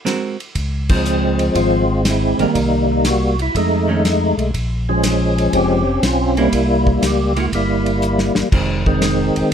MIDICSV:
0, 0, Header, 1, 5, 480
1, 0, Start_track
1, 0, Key_signature, -5, "major"
1, 0, Tempo, 497512
1, 534, Time_signature, 4, 2, 24, 8
1, 9202, End_track
2, 0, Start_track
2, 0, Title_t, "Tonewheel organ"
2, 0, Program_c, 0, 16
2, 869, Note_on_c, 0, 53, 50
2, 870, Note_on_c, 0, 60, 72
2, 877, Note_on_c, 0, 56, 52
2, 1495, Note_off_c, 0, 56, 0
2, 1502, Note_off_c, 0, 60, 0
2, 1506, Note_on_c, 0, 65, 88
2, 1507, Note_on_c, 0, 56, 57
2, 1514, Note_on_c, 0, 60, 65
2, 1787, Note_off_c, 0, 53, 0
2, 1947, Note_off_c, 0, 65, 0
2, 2003, Note_on_c, 0, 64, 91
2, 2294, Note_off_c, 0, 64, 0
2, 2334, Note_on_c, 0, 55, 61
2, 2334, Note_on_c, 0, 63, 85
2, 2341, Note_on_c, 0, 58, 63
2, 2421, Note_off_c, 0, 56, 0
2, 2425, Note_off_c, 0, 60, 0
2, 2765, Note_off_c, 0, 63, 0
2, 2815, Note_on_c, 0, 63, 82
2, 2954, Note_off_c, 0, 63, 0
2, 2959, Note_on_c, 0, 66, 100
2, 3239, Note_off_c, 0, 55, 0
2, 3242, Note_off_c, 0, 58, 0
2, 3284, Note_off_c, 0, 66, 0
2, 3300, Note_on_c, 0, 64, 88
2, 3437, Note_off_c, 0, 64, 0
2, 3441, Note_on_c, 0, 57, 65
2, 3442, Note_on_c, 0, 56, 59
2, 3456, Note_on_c, 0, 63, 83
2, 4204, Note_off_c, 0, 63, 0
2, 4348, Note_off_c, 0, 57, 0
2, 4349, Note_off_c, 0, 56, 0
2, 4718, Note_on_c, 0, 61, 76
2, 4720, Note_on_c, 0, 53, 58
2, 4722, Note_on_c, 0, 56, 57
2, 5338, Note_off_c, 0, 61, 0
2, 5345, Note_on_c, 0, 60, 71
2, 5349, Note_on_c, 0, 61, 76
2, 5357, Note_on_c, 0, 67, 99
2, 5632, Note_off_c, 0, 53, 0
2, 5633, Note_off_c, 0, 56, 0
2, 5792, Note_off_c, 0, 67, 0
2, 5841, Note_on_c, 0, 65, 95
2, 6133, Note_off_c, 0, 65, 0
2, 6160, Note_on_c, 0, 55, 68
2, 6163, Note_on_c, 0, 58, 62
2, 6171, Note_on_c, 0, 64, 106
2, 6260, Note_off_c, 0, 60, 0
2, 6263, Note_off_c, 0, 61, 0
2, 6647, Note_off_c, 0, 64, 0
2, 6658, Note_on_c, 0, 64, 74
2, 6796, Note_off_c, 0, 64, 0
2, 6807, Note_on_c, 0, 67, 93
2, 7072, Note_off_c, 0, 55, 0
2, 7073, Note_off_c, 0, 58, 0
2, 7127, Note_off_c, 0, 67, 0
2, 7140, Note_on_c, 0, 66, 88
2, 7199, Note_off_c, 0, 66, 0
2, 7279, Note_on_c, 0, 55, 58
2, 7284, Note_on_c, 0, 58, 58
2, 7288, Note_on_c, 0, 64, 79
2, 8040, Note_off_c, 0, 64, 0
2, 8188, Note_off_c, 0, 55, 0
2, 8190, Note_off_c, 0, 58, 0
2, 8549, Note_on_c, 0, 51, 61
2, 8555, Note_on_c, 0, 56, 51
2, 8566, Note_on_c, 0, 60, 85
2, 9177, Note_off_c, 0, 56, 0
2, 9178, Note_off_c, 0, 60, 0
2, 9202, Note_off_c, 0, 51, 0
2, 9202, End_track
3, 0, Start_track
3, 0, Title_t, "Hollow-body jazz guitar"
3, 0, Program_c, 1, 26
3, 48, Note_on_c, 1, 56, 47
3, 49, Note_on_c, 1, 60, 59
3, 58, Note_on_c, 1, 66, 65
3, 58, Note_on_c, 1, 70, 56
3, 346, Note_off_c, 1, 56, 0
3, 347, Note_off_c, 1, 60, 0
3, 351, Note_off_c, 1, 66, 0
3, 351, Note_off_c, 1, 70, 0
3, 2310, Note_on_c, 1, 51, 63
3, 2318, Note_on_c, 1, 58, 66
3, 2907, Note_off_c, 1, 51, 0
3, 2912, Note_off_c, 1, 58, 0
3, 3740, Note_on_c, 1, 51, 58
3, 3750, Note_on_c, 1, 57, 62
3, 3758, Note_on_c, 1, 61, 66
3, 3878, Note_off_c, 1, 51, 0
3, 3882, Note_off_c, 1, 57, 0
3, 3886, Note_off_c, 1, 61, 0
3, 6154, Note_on_c, 1, 58, 75
3, 6158, Note_on_c, 1, 64, 82
3, 6749, Note_off_c, 1, 58, 0
3, 6751, Note_off_c, 1, 64, 0
3, 7104, Note_on_c, 1, 56, 56
3, 7111, Note_on_c, 1, 58, 60
3, 7112, Note_on_c, 1, 64, 67
3, 7239, Note_off_c, 1, 56, 0
3, 7243, Note_off_c, 1, 58, 0
3, 7244, Note_off_c, 1, 64, 0
3, 8228, Note_on_c, 1, 51, 53
3, 8233, Note_on_c, 1, 56, 62
3, 8240, Note_on_c, 1, 60, 61
3, 8516, Note_off_c, 1, 51, 0
3, 8518, Note_off_c, 1, 56, 0
3, 8522, Note_off_c, 1, 60, 0
3, 9202, End_track
4, 0, Start_track
4, 0, Title_t, "Tonewheel organ"
4, 0, Program_c, 2, 16
4, 533, Note_on_c, 2, 37, 73
4, 1455, Note_off_c, 2, 37, 0
4, 1495, Note_on_c, 2, 32, 87
4, 2264, Note_off_c, 2, 32, 0
4, 2295, Note_on_c, 2, 32, 39
4, 2373, Note_off_c, 2, 32, 0
4, 2459, Note_on_c, 2, 36, 74
4, 3378, Note_off_c, 2, 36, 0
4, 3424, Note_on_c, 2, 41, 78
4, 4188, Note_off_c, 2, 41, 0
4, 4222, Note_on_c, 2, 35, 71
4, 4363, Note_off_c, 2, 35, 0
4, 4383, Note_on_c, 2, 34, 82
4, 5300, Note_off_c, 2, 34, 0
4, 5339, Note_on_c, 2, 29, 84
4, 5782, Note_off_c, 2, 29, 0
4, 5809, Note_on_c, 2, 35, 74
4, 6257, Note_off_c, 2, 35, 0
4, 6299, Note_on_c, 2, 36, 82
4, 6743, Note_off_c, 2, 36, 0
4, 6775, Note_on_c, 2, 37, 79
4, 7221, Note_off_c, 2, 37, 0
4, 7259, Note_on_c, 2, 31, 79
4, 8025, Note_off_c, 2, 31, 0
4, 8067, Note_on_c, 2, 31, 39
4, 8141, Note_off_c, 2, 31, 0
4, 8219, Note_on_c, 2, 29, 82
4, 8986, Note_off_c, 2, 29, 0
4, 9030, Note_on_c, 2, 29, 34
4, 9104, Note_off_c, 2, 29, 0
4, 9202, End_track
5, 0, Start_track
5, 0, Title_t, "Drums"
5, 62, Note_on_c, 9, 38, 57
5, 62, Note_on_c, 9, 44, 44
5, 62, Note_on_c, 9, 51, 59
5, 159, Note_off_c, 9, 38, 0
5, 159, Note_off_c, 9, 44, 0
5, 159, Note_off_c, 9, 51, 0
5, 388, Note_on_c, 9, 51, 40
5, 484, Note_off_c, 9, 51, 0
5, 534, Note_on_c, 9, 51, 59
5, 536, Note_on_c, 9, 36, 33
5, 630, Note_off_c, 9, 51, 0
5, 633, Note_off_c, 9, 36, 0
5, 862, Note_on_c, 9, 49, 73
5, 865, Note_on_c, 9, 36, 85
5, 958, Note_off_c, 9, 49, 0
5, 962, Note_off_c, 9, 36, 0
5, 1017, Note_on_c, 9, 44, 49
5, 1113, Note_off_c, 9, 44, 0
5, 1343, Note_on_c, 9, 51, 44
5, 1439, Note_off_c, 9, 51, 0
5, 1498, Note_on_c, 9, 36, 34
5, 1499, Note_on_c, 9, 51, 54
5, 1594, Note_off_c, 9, 36, 0
5, 1596, Note_off_c, 9, 51, 0
5, 1979, Note_on_c, 9, 38, 67
5, 1979, Note_on_c, 9, 44, 55
5, 1979, Note_on_c, 9, 51, 71
5, 2075, Note_off_c, 9, 38, 0
5, 2075, Note_off_c, 9, 44, 0
5, 2075, Note_off_c, 9, 51, 0
5, 2308, Note_on_c, 9, 51, 43
5, 2404, Note_off_c, 9, 51, 0
5, 2462, Note_on_c, 9, 36, 33
5, 2463, Note_on_c, 9, 51, 61
5, 2559, Note_off_c, 9, 36, 0
5, 2560, Note_off_c, 9, 51, 0
5, 2939, Note_on_c, 9, 38, 65
5, 2939, Note_on_c, 9, 44, 58
5, 2939, Note_on_c, 9, 51, 72
5, 3035, Note_off_c, 9, 38, 0
5, 3035, Note_off_c, 9, 44, 0
5, 3035, Note_off_c, 9, 51, 0
5, 3273, Note_on_c, 9, 51, 45
5, 3369, Note_off_c, 9, 51, 0
5, 3424, Note_on_c, 9, 36, 33
5, 3430, Note_on_c, 9, 51, 58
5, 3521, Note_off_c, 9, 36, 0
5, 3527, Note_off_c, 9, 51, 0
5, 3907, Note_on_c, 9, 38, 64
5, 3907, Note_on_c, 9, 44, 57
5, 3907, Note_on_c, 9, 51, 60
5, 4004, Note_off_c, 9, 38, 0
5, 4004, Note_off_c, 9, 44, 0
5, 4004, Note_off_c, 9, 51, 0
5, 4233, Note_on_c, 9, 51, 42
5, 4329, Note_off_c, 9, 51, 0
5, 4383, Note_on_c, 9, 36, 34
5, 4384, Note_on_c, 9, 51, 58
5, 4479, Note_off_c, 9, 36, 0
5, 4480, Note_off_c, 9, 51, 0
5, 4858, Note_on_c, 9, 38, 65
5, 4858, Note_on_c, 9, 44, 61
5, 4858, Note_on_c, 9, 51, 77
5, 4954, Note_off_c, 9, 38, 0
5, 4954, Note_off_c, 9, 44, 0
5, 4954, Note_off_c, 9, 51, 0
5, 5194, Note_on_c, 9, 51, 43
5, 5290, Note_off_c, 9, 51, 0
5, 5337, Note_on_c, 9, 51, 63
5, 5338, Note_on_c, 9, 36, 34
5, 5433, Note_off_c, 9, 51, 0
5, 5434, Note_off_c, 9, 36, 0
5, 5819, Note_on_c, 9, 38, 69
5, 5819, Note_on_c, 9, 44, 53
5, 5819, Note_on_c, 9, 51, 67
5, 5915, Note_off_c, 9, 38, 0
5, 5915, Note_off_c, 9, 44, 0
5, 5915, Note_off_c, 9, 51, 0
5, 6147, Note_on_c, 9, 51, 43
5, 6243, Note_off_c, 9, 51, 0
5, 6296, Note_on_c, 9, 36, 33
5, 6297, Note_on_c, 9, 51, 68
5, 6393, Note_off_c, 9, 36, 0
5, 6393, Note_off_c, 9, 51, 0
5, 6625, Note_on_c, 9, 36, 57
5, 6722, Note_off_c, 9, 36, 0
5, 6778, Note_on_c, 9, 38, 66
5, 6778, Note_on_c, 9, 44, 65
5, 6778, Note_on_c, 9, 51, 66
5, 6875, Note_off_c, 9, 38, 0
5, 6875, Note_off_c, 9, 44, 0
5, 6875, Note_off_c, 9, 51, 0
5, 7105, Note_on_c, 9, 51, 47
5, 7202, Note_off_c, 9, 51, 0
5, 7261, Note_on_c, 9, 36, 32
5, 7264, Note_on_c, 9, 51, 60
5, 7357, Note_off_c, 9, 36, 0
5, 7360, Note_off_c, 9, 51, 0
5, 7585, Note_on_c, 9, 51, 45
5, 7682, Note_off_c, 9, 51, 0
5, 7739, Note_on_c, 9, 44, 57
5, 7836, Note_off_c, 9, 44, 0
5, 7897, Note_on_c, 9, 38, 50
5, 7993, Note_off_c, 9, 38, 0
5, 8058, Note_on_c, 9, 38, 75
5, 8154, Note_off_c, 9, 38, 0
5, 8222, Note_on_c, 9, 49, 74
5, 8223, Note_on_c, 9, 36, 76
5, 8319, Note_off_c, 9, 49, 0
5, 8320, Note_off_c, 9, 36, 0
5, 8552, Note_on_c, 9, 36, 63
5, 8648, Note_off_c, 9, 36, 0
5, 8700, Note_on_c, 9, 38, 68
5, 8700, Note_on_c, 9, 44, 54
5, 8700, Note_on_c, 9, 51, 69
5, 8796, Note_off_c, 9, 38, 0
5, 8796, Note_off_c, 9, 44, 0
5, 8796, Note_off_c, 9, 51, 0
5, 9031, Note_on_c, 9, 51, 47
5, 9127, Note_off_c, 9, 51, 0
5, 9202, End_track
0, 0, End_of_file